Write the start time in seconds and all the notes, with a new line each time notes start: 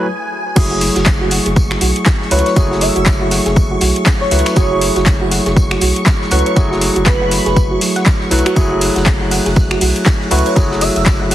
Already playing: G#5
0.55 F#1 F#3 A3 E4 F#4 G#4 C#6, kick, closed hi-hat, tambourine, crash
0.71 F#4
0.81 open hi-hat, tambourine
0.95 F#1 F#4, snare, closed hi-hat
1.06 finger snap, kick, snare, clap, closed hi-hat, tambourine
1.21 F#4
1.31 F#5, open hi-hat, tambourine
1.46 F#1 G#4, closed hi-hat
1.56 kick, closed hi-hat, tambourine
1.71 F#4, finger snap, snare
1.81 B1 F#4, open hi-hat, tambourine
1.96 closed hi-hat
2.06 kick, snare, clap, closed hi-hat, tambourine
2.22 snare
2.31 C#2 F#3 A3 E4 B4 C#5 F#5, open hi-hat, tambourine
2.39 closed hi-hat
2.46 C#5, snare, closed hi-hat
2.55 F#1 F#3 A3 E4 F#4 G#4, kick, closed hi-hat, tambourine
2.71 F#4, snare
2.81 E5, open hi-hat, tambourine
2.96 F#1 F#4 E5, closed hi-hat
3.06 finger snap, kick, snare, clap, closed hi-hat, tambourine
3.21 F#4
3.31 F#5, snare, open hi-hat, tambourine
3.46 F#1 G#4, snare, closed hi-hat
3.56 kick, closed hi-hat, tambourine
3.71 F#4
3.81 B1 F#4, open hi-hat, tambourine
3.96 closed hi-hat
4.06 kick, snare, clap, closed hi-hat, tambourine
4.21 C#5, snare
4.31 C#2 F#3 A3 E4 B4 F#5, open hi-hat, tambourine
4.39 closed hi-hat
4.46 finger snap, snare, closed hi-hat, tambourine
4.55 F#1 F#3 A3 E4 F#4 G#4, kick, closed hi-hat, tambourine
4.71 F#4
4.81 open hi-hat, tambourine
4.96 F#1 F#4, snare, closed hi-hat
5.06 finger snap, kick, snare, clap, closed hi-hat, tambourine
5.21 F#4
5.31 F#5, open hi-hat, tambourine
5.46 F#1 G#4, snare, closed hi-hat
5.56 kick, closed hi-hat, tambourine
5.71 F#4, finger snap, snare
5.81 B1 F#4, open hi-hat, tambourine
5.96 closed hi-hat
6.06 kick, snare, clap, closed hi-hat, tambourine
6.22 snare
6.31 C#2 F#3 A3 E4 B4 C#5 F#5, open hi-hat, tambourine
6.39 closed hi-hat
6.46 C#5, closed hi-hat
6.55 F#1 F#3 A3 E4 F#4 G#4, kick, closed hi-hat, tambourine
6.71 F#4, snare
6.81 open hi-hat, tambourine
6.96 F#1 F#4, closed hi-hat
7.06 B4, finger snap, kick, snare, clap, closed hi-hat, tambourine
7.21 F#4
7.31 F#5, snare, open hi-hat, tambourine
7.46 F#1 G#4, snare, closed hi-hat
7.56 kick, closed hi-hat, tambourine
7.71 F#4
7.81 F#3, open hi-hat, tambourine
7.96 F#5, snare, closed hi-hat
8.06 kick, snare, clap, closed hi-hat, tambourine
8.21 snare
8.31 B1 F#3 A3 E4 B4, open hi-hat, tambourine
8.39 closed hi-hat
8.46 F#4, finger snap, closed hi-hat
8.55 F#1 F#3 A3 E4 F#4 G#4 F#6, kick, closed hi-hat, tambourine
8.71 F#4
8.81 open hi-hat, ride, tambourine
8.96 F#1 F#4, snare, closed hi-hat
9.06 finger snap, kick, snare, clap, closed hi-hat, tambourine
9.21 F#4
9.31 F#5, open hi-hat, ride, tambourine
9.46 F#1 G#4, snare, closed hi-hat
9.56 kick, closed hi-hat, tambourine
9.71 F#4, finger snap, snare
9.81 B1 F#4, open hi-hat, ride, tambourine
9.96 closed hi-hat
10.06 kick, snare, clap, closed hi-hat, tambourine
10.21 snare
10.31 C#2 F#3 A3 E4 B4 C#5 F#5, open hi-hat, ride, tambourine
10.39 closed hi-hat
10.46 C#5, closed hi-hat
10.55 F#1 F#3 A3 E4 F#4 G#4, kick, closed hi-hat, tambourine
10.71 F#4, snare
10.81 E5, open hi-hat, ride, tambourine
10.96 F#1 F#4 E5, closed hi-hat
11.06 finger snap, kick, snare, clap, closed hi-hat, tambourine
11.21 F#4
11.31 F#5, snare, open hi-hat, ride